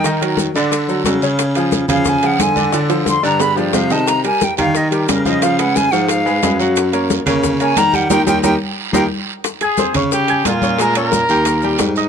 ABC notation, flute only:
X:1
M:4/4
L:1/8
Q:1/4=179
K:Dblyd
V:1 name="Flute"
z8 | z3 f a _g a2 | z2 c' b _c' =d f =a | b a g f e G B e |
f _g a g f4 | z4 z a b _g | g g g z2 g z2 | z8 |
z8 |]